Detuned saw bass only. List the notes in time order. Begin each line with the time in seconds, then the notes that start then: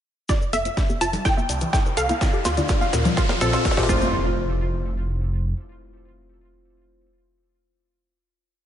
0.53 F1
1.01 F1
1.49 C2
1.97 C2
2.45 D2
2.93 D2
3.41 A#1
3.89 F1